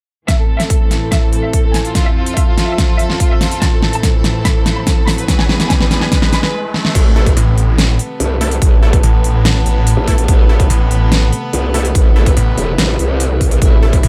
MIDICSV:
0, 0, Header, 1, 9, 480
1, 0, Start_track
1, 0, Key_signature, 0, "minor"
1, 0, Tempo, 416667
1, 327, Time_signature, 4, 2, 24, 8
1, 16222, End_track
2, 0, Start_track
2, 0, Title_t, "Ambient pad"
2, 0, Program_c, 0, 92
2, 328, Note_on_c, 0, 64, 72
2, 546, Note_on_c, 0, 72, 77
2, 979, Note_on_c, 0, 81, 73
2, 2247, Note_on_c, 0, 65, 91
2, 2248, Note_off_c, 0, 64, 0
2, 4167, Note_off_c, 0, 65, 0
2, 4169, Note_on_c, 0, 64, 67
2, 6087, Note_off_c, 0, 81, 0
2, 6088, Note_off_c, 0, 72, 0
2, 6188, Note_on_c, 0, 71, 70
2, 6712, Note_on_c, 0, 80, 74
2, 7528, Note_off_c, 0, 64, 0
2, 7528, Note_off_c, 0, 71, 0
2, 7528, Note_off_c, 0, 80, 0
2, 8778, Note_on_c, 0, 81, 79
2, 12615, Note_on_c, 0, 71, 80
2, 12641, Note_off_c, 0, 81, 0
2, 16222, Note_off_c, 0, 71, 0
2, 16222, End_track
3, 0, Start_track
3, 0, Title_t, "Violin section"
3, 0, Program_c, 1, 48
3, 327, Note_on_c, 1, 76, 94
3, 416, Note_off_c, 1, 76, 0
3, 448, Note_on_c, 1, 69, 61
3, 536, Note_off_c, 1, 69, 0
3, 567, Note_on_c, 1, 69, 58
3, 657, Note_off_c, 1, 69, 0
3, 688, Note_on_c, 1, 76, 91
3, 776, Note_off_c, 1, 76, 0
3, 806, Note_on_c, 1, 69, 57
3, 896, Note_off_c, 1, 69, 0
3, 928, Note_on_c, 1, 69, 61
3, 1016, Note_off_c, 1, 69, 0
3, 1169, Note_on_c, 1, 69, 59
3, 1256, Note_off_c, 1, 69, 0
3, 1287, Note_on_c, 1, 76, 87
3, 1376, Note_off_c, 1, 76, 0
3, 1408, Note_on_c, 1, 69, 59
3, 1496, Note_off_c, 1, 69, 0
3, 1527, Note_on_c, 1, 69, 60
3, 1617, Note_off_c, 1, 69, 0
3, 1647, Note_on_c, 1, 76, 85
3, 1736, Note_off_c, 1, 76, 0
3, 1766, Note_on_c, 1, 69, 62
3, 1856, Note_off_c, 1, 69, 0
3, 1889, Note_on_c, 1, 69, 62
3, 1976, Note_off_c, 1, 69, 0
3, 2008, Note_on_c, 1, 80, 86
3, 2097, Note_off_c, 1, 80, 0
3, 2129, Note_on_c, 1, 65, 61
3, 2217, Note_off_c, 1, 65, 0
3, 2248, Note_on_c, 1, 65, 63
3, 2337, Note_off_c, 1, 65, 0
3, 2369, Note_on_c, 1, 76, 89
3, 2456, Note_off_c, 1, 76, 0
3, 2488, Note_on_c, 1, 65, 60
3, 2577, Note_off_c, 1, 65, 0
3, 2608, Note_on_c, 1, 65, 65
3, 2696, Note_off_c, 1, 65, 0
3, 2725, Note_on_c, 1, 76, 88
3, 2816, Note_off_c, 1, 76, 0
3, 2847, Note_on_c, 1, 65, 59
3, 2936, Note_off_c, 1, 65, 0
3, 2967, Note_on_c, 1, 65, 62
3, 3056, Note_off_c, 1, 65, 0
3, 3087, Note_on_c, 1, 76, 91
3, 3175, Note_off_c, 1, 76, 0
3, 3206, Note_on_c, 1, 65, 58
3, 3296, Note_off_c, 1, 65, 0
3, 3326, Note_on_c, 1, 65, 61
3, 3415, Note_off_c, 1, 65, 0
3, 3445, Note_on_c, 1, 76, 88
3, 3536, Note_off_c, 1, 76, 0
3, 3566, Note_on_c, 1, 65, 61
3, 3655, Note_off_c, 1, 65, 0
3, 3687, Note_on_c, 1, 65, 61
3, 3776, Note_off_c, 1, 65, 0
3, 3807, Note_on_c, 1, 76, 93
3, 3896, Note_off_c, 1, 76, 0
3, 3926, Note_on_c, 1, 65, 61
3, 4016, Note_off_c, 1, 65, 0
3, 4047, Note_on_c, 1, 65, 61
3, 4136, Note_off_c, 1, 65, 0
3, 4166, Note_on_c, 1, 81, 98
3, 4256, Note_off_c, 1, 81, 0
3, 4289, Note_on_c, 1, 69, 63
3, 4376, Note_off_c, 1, 69, 0
3, 4406, Note_on_c, 1, 69, 61
3, 4496, Note_off_c, 1, 69, 0
3, 4526, Note_on_c, 1, 81, 91
3, 4615, Note_off_c, 1, 81, 0
3, 4647, Note_on_c, 1, 69, 64
3, 4736, Note_off_c, 1, 69, 0
3, 4768, Note_on_c, 1, 69, 63
3, 4856, Note_off_c, 1, 69, 0
3, 5007, Note_on_c, 1, 69, 65
3, 5096, Note_off_c, 1, 69, 0
3, 5126, Note_on_c, 1, 83, 88
3, 5216, Note_off_c, 1, 83, 0
3, 5247, Note_on_c, 1, 69, 63
3, 5335, Note_off_c, 1, 69, 0
3, 5366, Note_on_c, 1, 69, 62
3, 5456, Note_off_c, 1, 69, 0
3, 5488, Note_on_c, 1, 83, 90
3, 5576, Note_off_c, 1, 83, 0
3, 5607, Note_on_c, 1, 69, 62
3, 5697, Note_off_c, 1, 69, 0
3, 5728, Note_on_c, 1, 69, 67
3, 5816, Note_off_c, 1, 69, 0
3, 5845, Note_on_c, 1, 83, 94
3, 5936, Note_off_c, 1, 83, 0
3, 5966, Note_on_c, 1, 71, 66
3, 6055, Note_off_c, 1, 71, 0
3, 6085, Note_on_c, 1, 71, 65
3, 6175, Note_off_c, 1, 71, 0
3, 6207, Note_on_c, 1, 80, 91
3, 6296, Note_off_c, 1, 80, 0
3, 6327, Note_on_c, 1, 71, 65
3, 6416, Note_off_c, 1, 71, 0
3, 6449, Note_on_c, 1, 71, 67
3, 6537, Note_off_c, 1, 71, 0
3, 6566, Note_on_c, 1, 80, 91
3, 6656, Note_off_c, 1, 80, 0
3, 6689, Note_on_c, 1, 71, 65
3, 6776, Note_off_c, 1, 71, 0
3, 6806, Note_on_c, 1, 71, 63
3, 6896, Note_off_c, 1, 71, 0
3, 6929, Note_on_c, 1, 80, 99
3, 7016, Note_off_c, 1, 80, 0
3, 7047, Note_on_c, 1, 71, 62
3, 7137, Note_off_c, 1, 71, 0
3, 7169, Note_on_c, 1, 71, 64
3, 7256, Note_off_c, 1, 71, 0
3, 7288, Note_on_c, 1, 83, 90
3, 7377, Note_off_c, 1, 83, 0
3, 7409, Note_on_c, 1, 71, 67
3, 7497, Note_off_c, 1, 71, 0
3, 16222, End_track
4, 0, Start_track
4, 0, Title_t, "Supersaw synth"
4, 0, Program_c, 2, 81
4, 8247, Note_on_c, 2, 69, 95
4, 8248, Note_on_c, 2, 57, 84
4, 8248, Note_on_c, 2, 64, 80
4, 8310, Note_off_c, 2, 57, 0
4, 8310, Note_off_c, 2, 64, 0
4, 8310, Note_off_c, 2, 69, 0
4, 9687, Note_on_c, 2, 57, 96
4, 9687, Note_on_c, 2, 64, 92
4, 9687, Note_on_c, 2, 69, 108
4, 9750, Note_off_c, 2, 57, 0
4, 9750, Note_off_c, 2, 64, 0
4, 9750, Note_off_c, 2, 69, 0
4, 10167, Note_on_c, 2, 57, 77
4, 10167, Note_on_c, 2, 64, 73
4, 10167, Note_on_c, 2, 69, 88
4, 10230, Note_off_c, 2, 57, 0
4, 10230, Note_off_c, 2, 64, 0
4, 10230, Note_off_c, 2, 69, 0
4, 11607, Note_on_c, 2, 57, 91
4, 11607, Note_on_c, 2, 64, 89
4, 11607, Note_on_c, 2, 69, 103
4, 11670, Note_off_c, 2, 57, 0
4, 11670, Note_off_c, 2, 64, 0
4, 11670, Note_off_c, 2, 69, 0
4, 12087, Note_on_c, 2, 57, 83
4, 12087, Note_on_c, 2, 64, 80
4, 12087, Note_on_c, 2, 69, 94
4, 12150, Note_off_c, 2, 57, 0
4, 12150, Note_off_c, 2, 64, 0
4, 12150, Note_off_c, 2, 69, 0
4, 13527, Note_on_c, 2, 57, 99
4, 13527, Note_on_c, 2, 64, 90
4, 13527, Note_on_c, 2, 69, 109
4, 13590, Note_off_c, 2, 57, 0
4, 13590, Note_off_c, 2, 64, 0
4, 13590, Note_off_c, 2, 69, 0
4, 14007, Note_on_c, 2, 57, 77
4, 14007, Note_on_c, 2, 64, 72
4, 14007, Note_on_c, 2, 69, 84
4, 14070, Note_off_c, 2, 57, 0
4, 14070, Note_off_c, 2, 64, 0
4, 14070, Note_off_c, 2, 69, 0
4, 15927, Note_on_c, 2, 57, 86
4, 15927, Note_on_c, 2, 64, 79
4, 15927, Note_on_c, 2, 69, 96
4, 15990, Note_off_c, 2, 57, 0
4, 15990, Note_off_c, 2, 64, 0
4, 15990, Note_off_c, 2, 69, 0
4, 16222, End_track
5, 0, Start_track
5, 0, Title_t, "String section"
5, 0, Program_c, 3, 48
5, 327, Note_on_c, 3, 45, 76
5, 327, Note_on_c, 3, 60, 72
5, 327, Note_on_c, 3, 69, 84
5, 328, Note_on_c, 3, 52, 71
5, 2228, Note_off_c, 3, 45, 0
5, 2228, Note_off_c, 3, 52, 0
5, 2247, Note_on_c, 3, 41, 78
5, 2248, Note_on_c, 3, 53, 71
5, 4129, Note_off_c, 3, 60, 0
5, 4148, Note_off_c, 3, 41, 0
5, 4148, Note_off_c, 3, 53, 0
5, 4166, Note_on_c, 3, 45, 83
5, 4166, Note_on_c, 3, 52, 74
5, 4166, Note_on_c, 3, 60, 75
5, 6041, Note_off_c, 3, 69, 0
5, 6067, Note_off_c, 3, 60, 0
5, 6068, Note_off_c, 3, 45, 0
5, 6068, Note_off_c, 3, 52, 0
5, 6086, Note_on_c, 3, 40, 77
5, 6086, Note_on_c, 3, 59, 72
5, 6086, Note_on_c, 3, 68, 89
5, 6087, Note_on_c, 3, 52, 72
5, 7512, Note_off_c, 3, 40, 0
5, 7512, Note_off_c, 3, 68, 0
5, 7513, Note_off_c, 3, 52, 0
5, 7513, Note_off_c, 3, 59, 0
5, 8007, Note_on_c, 3, 48, 79
5, 8007, Note_on_c, 3, 57, 78
5, 8007, Note_on_c, 3, 59, 94
5, 15665, Note_off_c, 3, 59, 0
5, 15687, Note_on_c, 3, 64, 91
5, 16222, Note_off_c, 3, 48, 0
5, 16222, Note_off_c, 3, 57, 0
5, 16222, Note_off_c, 3, 64, 0
5, 16222, End_track
6, 0, Start_track
6, 0, Title_t, "Detuned saw bass"
6, 0, Program_c, 4, 39
6, 8487, Note_on_c, 4, 33, 100
6, 9188, Note_off_c, 4, 33, 0
6, 10408, Note_on_c, 4, 33, 95
6, 11108, Note_off_c, 4, 33, 0
6, 11126, Note_on_c, 4, 33, 106
6, 11468, Note_off_c, 4, 33, 0
6, 12327, Note_on_c, 4, 33, 101
6, 13028, Note_off_c, 4, 33, 0
6, 14247, Note_on_c, 4, 33, 99
6, 14468, Note_off_c, 4, 33, 0
6, 16166, Note_on_c, 4, 33, 99
6, 16222, Note_off_c, 4, 33, 0
6, 16222, End_track
7, 0, Start_track
7, 0, Title_t, "Wobble bass"
7, 0, Program_c, 5, 39
7, 8008, Note_on_c, 5, 33, 96
7, 8469, Note_off_c, 5, 33, 0
7, 9447, Note_on_c, 5, 36, 97
7, 9908, Note_off_c, 5, 36, 0
7, 9927, Note_on_c, 5, 33, 95
7, 10388, Note_off_c, 5, 33, 0
7, 11487, Note_on_c, 5, 33, 96
7, 11827, Note_off_c, 5, 33, 0
7, 11847, Note_on_c, 5, 33, 98
7, 12308, Note_off_c, 5, 33, 0
7, 13286, Note_on_c, 5, 36, 98
7, 13748, Note_off_c, 5, 36, 0
7, 13767, Note_on_c, 5, 33, 99
7, 14228, Note_off_c, 5, 33, 0
7, 14487, Note_on_c, 5, 28, 96
7, 14708, Note_off_c, 5, 28, 0
7, 14727, Note_on_c, 5, 33, 97
7, 14948, Note_off_c, 5, 33, 0
7, 14966, Note_on_c, 5, 36, 94
7, 15668, Note_off_c, 5, 36, 0
7, 15687, Note_on_c, 5, 33, 98
7, 16148, Note_off_c, 5, 33, 0
7, 16222, End_track
8, 0, Start_track
8, 0, Title_t, "Riser"
8, 0, Program_c, 6, 103
8, 327, Note_on_c, 6, 60, 74
8, 8007, Note_off_c, 6, 60, 0
8, 16222, End_track
9, 0, Start_track
9, 0, Title_t, "Drums"
9, 327, Note_on_c, 9, 36, 95
9, 327, Note_on_c, 9, 38, 47
9, 327, Note_on_c, 9, 42, 73
9, 442, Note_off_c, 9, 36, 0
9, 442, Note_off_c, 9, 38, 0
9, 442, Note_off_c, 9, 42, 0
9, 688, Note_on_c, 9, 38, 41
9, 688, Note_on_c, 9, 42, 51
9, 804, Note_off_c, 9, 38, 0
9, 804, Note_off_c, 9, 42, 0
9, 807, Note_on_c, 9, 36, 96
9, 807, Note_on_c, 9, 42, 77
9, 922, Note_off_c, 9, 42, 0
9, 923, Note_off_c, 9, 36, 0
9, 1047, Note_on_c, 9, 38, 49
9, 1047, Note_on_c, 9, 42, 52
9, 1163, Note_off_c, 9, 38, 0
9, 1163, Note_off_c, 9, 42, 0
9, 1287, Note_on_c, 9, 36, 90
9, 1287, Note_on_c, 9, 38, 50
9, 1287, Note_on_c, 9, 42, 73
9, 1402, Note_off_c, 9, 38, 0
9, 1402, Note_off_c, 9, 42, 0
9, 1403, Note_off_c, 9, 36, 0
9, 1527, Note_on_c, 9, 42, 50
9, 1643, Note_off_c, 9, 42, 0
9, 1767, Note_on_c, 9, 36, 92
9, 1767, Note_on_c, 9, 42, 75
9, 1882, Note_off_c, 9, 42, 0
9, 1883, Note_off_c, 9, 36, 0
9, 2007, Note_on_c, 9, 38, 55
9, 2007, Note_on_c, 9, 46, 91
9, 2122, Note_off_c, 9, 38, 0
9, 2122, Note_off_c, 9, 46, 0
9, 2128, Note_on_c, 9, 42, 51
9, 2243, Note_off_c, 9, 42, 0
9, 2247, Note_on_c, 9, 36, 89
9, 2247, Note_on_c, 9, 38, 55
9, 2247, Note_on_c, 9, 42, 79
9, 2362, Note_off_c, 9, 38, 0
9, 2362, Note_off_c, 9, 42, 0
9, 2363, Note_off_c, 9, 36, 0
9, 2608, Note_on_c, 9, 42, 55
9, 2723, Note_off_c, 9, 42, 0
9, 2727, Note_on_c, 9, 36, 95
9, 2727, Note_on_c, 9, 42, 79
9, 2842, Note_off_c, 9, 36, 0
9, 2842, Note_off_c, 9, 42, 0
9, 2967, Note_on_c, 9, 38, 62
9, 2967, Note_on_c, 9, 42, 53
9, 3082, Note_off_c, 9, 38, 0
9, 3082, Note_off_c, 9, 42, 0
9, 3207, Note_on_c, 9, 36, 91
9, 3207, Note_on_c, 9, 38, 61
9, 3207, Note_on_c, 9, 42, 76
9, 3322, Note_off_c, 9, 36, 0
9, 3322, Note_off_c, 9, 38, 0
9, 3322, Note_off_c, 9, 42, 0
9, 3447, Note_on_c, 9, 42, 51
9, 3562, Note_off_c, 9, 42, 0
9, 3568, Note_on_c, 9, 38, 58
9, 3683, Note_off_c, 9, 38, 0
9, 3687, Note_on_c, 9, 36, 98
9, 3687, Note_on_c, 9, 42, 81
9, 3802, Note_off_c, 9, 36, 0
9, 3802, Note_off_c, 9, 42, 0
9, 3927, Note_on_c, 9, 38, 68
9, 3927, Note_on_c, 9, 46, 88
9, 4042, Note_off_c, 9, 38, 0
9, 4042, Note_off_c, 9, 46, 0
9, 4048, Note_on_c, 9, 42, 54
9, 4163, Note_off_c, 9, 42, 0
9, 4167, Note_on_c, 9, 36, 93
9, 4167, Note_on_c, 9, 38, 71
9, 4167, Note_on_c, 9, 42, 79
9, 4282, Note_off_c, 9, 36, 0
9, 4282, Note_off_c, 9, 38, 0
9, 4282, Note_off_c, 9, 42, 0
9, 4407, Note_on_c, 9, 38, 78
9, 4522, Note_off_c, 9, 38, 0
9, 4528, Note_on_c, 9, 42, 53
9, 4643, Note_off_c, 9, 42, 0
9, 4647, Note_on_c, 9, 36, 96
9, 4647, Note_on_c, 9, 38, 74
9, 4647, Note_on_c, 9, 42, 83
9, 4762, Note_off_c, 9, 36, 0
9, 4762, Note_off_c, 9, 38, 0
9, 4762, Note_off_c, 9, 42, 0
9, 4887, Note_on_c, 9, 38, 80
9, 4887, Note_on_c, 9, 42, 53
9, 5002, Note_off_c, 9, 38, 0
9, 5002, Note_off_c, 9, 42, 0
9, 5127, Note_on_c, 9, 36, 92
9, 5127, Note_on_c, 9, 38, 79
9, 5127, Note_on_c, 9, 42, 79
9, 5242, Note_off_c, 9, 36, 0
9, 5242, Note_off_c, 9, 38, 0
9, 5242, Note_off_c, 9, 42, 0
9, 5367, Note_on_c, 9, 38, 80
9, 5367, Note_on_c, 9, 42, 51
9, 5482, Note_off_c, 9, 38, 0
9, 5482, Note_off_c, 9, 42, 0
9, 5607, Note_on_c, 9, 36, 100
9, 5607, Note_on_c, 9, 38, 85
9, 5607, Note_on_c, 9, 42, 80
9, 5722, Note_off_c, 9, 36, 0
9, 5723, Note_off_c, 9, 38, 0
9, 5723, Note_off_c, 9, 42, 0
9, 5847, Note_on_c, 9, 38, 82
9, 5847, Note_on_c, 9, 46, 85
9, 5962, Note_off_c, 9, 38, 0
9, 5962, Note_off_c, 9, 46, 0
9, 5968, Note_on_c, 9, 42, 56
9, 6084, Note_off_c, 9, 42, 0
9, 6087, Note_on_c, 9, 36, 93
9, 6087, Note_on_c, 9, 38, 93
9, 6087, Note_on_c, 9, 42, 82
9, 6202, Note_off_c, 9, 36, 0
9, 6203, Note_off_c, 9, 38, 0
9, 6203, Note_off_c, 9, 42, 0
9, 6208, Note_on_c, 9, 38, 80
9, 6323, Note_off_c, 9, 38, 0
9, 6327, Note_on_c, 9, 38, 99
9, 6443, Note_off_c, 9, 38, 0
9, 6449, Note_on_c, 9, 38, 81
9, 6449, Note_on_c, 9, 42, 50
9, 6564, Note_off_c, 9, 38, 0
9, 6564, Note_off_c, 9, 42, 0
9, 6567, Note_on_c, 9, 36, 102
9, 6567, Note_on_c, 9, 38, 97
9, 6567, Note_on_c, 9, 42, 81
9, 6682, Note_off_c, 9, 36, 0
9, 6683, Note_off_c, 9, 38, 0
9, 6683, Note_off_c, 9, 42, 0
9, 6688, Note_on_c, 9, 38, 82
9, 6803, Note_off_c, 9, 38, 0
9, 6807, Note_on_c, 9, 38, 101
9, 6807, Note_on_c, 9, 42, 50
9, 6922, Note_off_c, 9, 38, 0
9, 6922, Note_off_c, 9, 42, 0
9, 6928, Note_on_c, 9, 38, 85
9, 7043, Note_off_c, 9, 38, 0
9, 7047, Note_on_c, 9, 36, 94
9, 7047, Note_on_c, 9, 38, 100
9, 7047, Note_on_c, 9, 42, 76
9, 7162, Note_off_c, 9, 38, 0
9, 7162, Note_off_c, 9, 42, 0
9, 7163, Note_off_c, 9, 36, 0
9, 7168, Note_on_c, 9, 38, 91
9, 7283, Note_off_c, 9, 38, 0
9, 7287, Note_on_c, 9, 38, 99
9, 7287, Note_on_c, 9, 42, 51
9, 7402, Note_off_c, 9, 38, 0
9, 7402, Note_off_c, 9, 42, 0
9, 7408, Note_on_c, 9, 38, 91
9, 7523, Note_off_c, 9, 38, 0
9, 7768, Note_on_c, 9, 38, 59
9, 7883, Note_off_c, 9, 38, 0
9, 7889, Note_on_c, 9, 38, 73
9, 8004, Note_off_c, 9, 38, 0
9, 8008, Note_on_c, 9, 36, 121
9, 8008, Note_on_c, 9, 42, 83
9, 8008, Note_on_c, 9, 49, 101
9, 8123, Note_off_c, 9, 36, 0
9, 8123, Note_off_c, 9, 42, 0
9, 8123, Note_off_c, 9, 49, 0
9, 8369, Note_on_c, 9, 36, 101
9, 8369, Note_on_c, 9, 42, 54
9, 8484, Note_off_c, 9, 36, 0
9, 8484, Note_off_c, 9, 42, 0
9, 8488, Note_on_c, 9, 42, 82
9, 8603, Note_off_c, 9, 42, 0
9, 8727, Note_on_c, 9, 42, 54
9, 8843, Note_off_c, 9, 42, 0
9, 8968, Note_on_c, 9, 38, 117
9, 8968, Note_on_c, 9, 42, 80
9, 9083, Note_off_c, 9, 38, 0
9, 9083, Note_off_c, 9, 42, 0
9, 9208, Note_on_c, 9, 42, 54
9, 9323, Note_off_c, 9, 42, 0
9, 9447, Note_on_c, 9, 42, 81
9, 9563, Note_off_c, 9, 42, 0
9, 9688, Note_on_c, 9, 46, 91
9, 9803, Note_off_c, 9, 46, 0
9, 9808, Note_on_c, 9, 42, 55
9, 9923, Note_off_c, 9, 42, 0
9, 9927, Note_on_c, 9, 36, 125
9, 9927, Note_on_c, 9, 42, 84
9, 10042, Note_off_c, 9, 42, 0
9, 10043, Note_off_c, 9, 36, 0
9, 10288, Note_on_c, 9, 36, 108
9, 10288, Note_on_c, 9, 42, 53
9, 10403, Note_off_c, 9, 36, 0
9, 10403, Note_off_c, 9, 42, 0
9, 10407, Note_on_c, 9, 42, 87
9, 10522, Note_off_c, 9, 42, 0
9, 10647, Note_on_c, 9, 42, 58
9, 10762, Note_off_c, 9, 42, 0
9, 10887, Note_on_c, 9, 38, 122
9, 10887, Note_on_c, 9, 42, 80
9, 11002, Note_off_c, 9, 38, 0
9, 11002, Note_off_c, 9, 42, 0
9, 11127, Note_on_c, 9, 42, 53
9, 11243, Note_off_c, 9, 42, 0
9, 11367, Note_on_c, 9, 42, 83
9, 11482, Note_off_c, 9, 42, 0
9, 11607, Note_on_c, 9, 36, 64
9, 11607, Note_on_c, 9, 46, 89
9, 11722, Note_off_c, 9, 46, 0
9, 11723, Note_off_c, 9, 36, 0
9, 11728, Note_on_c, 9, 42, 56
9, 11843, Note_off_c, 9, 42, 0
9, 11847, Note_on_c, 9, 36, 127
9, 11847, Note_on_c, 9, 42, 81
9, 11962, Note_off_c, 9, 36, 0
9, 11962, Note_off_c, 9, 42, 0
9, 12208, Note_on_c, 9, 36, 108
9, 12208, Note_on_c, 9, 42, 54
9, 12323, Note_off_c, 9, 36, 0
9, 12323, Note_off_c, 9, 42, 0
9, 12327, Note_on_c, 9, 42, 82
9, 12442, Note_off_c, 9, 42, 0
9, 12567, Note_on_c, 9, 42, 57
9, 12682, Note_off_c, 9, 42, 0
9, 12807, Note_on_c, 9, 38, 125
9, 12807, Note_on_c, 9, 42, 78
9, 12922, Note_off_c, 9, 38, 0
9, 12922, Note_off_c, 9, 42, 0
9, 13047, Note_on_c, 9, 42, 52
9, 13162, Note_off_c, 9, 42, 0
9, 13287, Note_on_c, 9, 42, 77
9, 13402, Note_off_c, 9, 42, 0
9, 13527, Note_on_c, 9, 46, 89
9, 13642, Note_off_c, 9, 46, 0
9, 13648, Note_on_c, 9, 42, 54
9, 13763, Note_off_c, 9, 42, 0
9, 13767, Note_on_c, 9, 36, 119
9, 13767, Note_on_c, 9, 42, 78
9, 13882, Note_off_c, 9, 36, 0
9, 13882, Note_off_c, 9, 42, 0
9, 14128, Note_on_c, 9, 36, 104
9, 14128, Note_on_c, 9, 42, 51
9, 14243, Note_off_c, 9, 36, 0
9, 14243, Note_off_c, 9, 42, 0
9, 14247, Note_on_c, 9, 42, 79
9, 14362, Note_off_c, 9, 42, 0
9, 14487, Note_on_c, 9, 42, 51
9, 14602, Note_off_c, 9, 42, 0
9, 14727, Note_on_c, 9, 38, 120
9, 14727, Note_on_c, 9, 42, 76
9, 14842, Note_off_c, 9, 38, 0
9, 14842, Note_off_c, 9, 42, 0
9, 14967, Note_on_c, 9, 42, 52
9, 15082, Note_off_c, 9, 42, 0
9, 15207, Note_on_c, 9, 42, 75
9, 15322, Note_off_c, 9, 42, 0
9, 15447, Note_on_c, 9, 36, 62
9, 15447, Note_on_c, 9, 46, 85
9, 15562, Note_off_c, 9, 36, 0
9, 15562, Note_off_c, 9, 46, 0
9, 15568, Note_on_c, 9, 42, 51
9, 15683, Note_off_c, 9, 42, 0
9, 15686, Note_on_c, 9, 42, 79
9, 15687, Note_on_c, 9, 36, 120
9, 15802, Note_off_c, 9, 36, 0
9, 15802, Note_off_c, 9, 42, 0
9, 16048, Note_on_c, 9, 36, 104
9, 16048, Note_on_c, 9, 42, 50
9, 16163, Note_off_c, 9, 36, 0
9, 16163, Note_off_c, 9, 42, 0
9, 16167, Note_on_c, 9, 42, 75
9, 16222, Note_off_c, 9, 42, 0
9, 16222, End_track
0, 0, End_of_file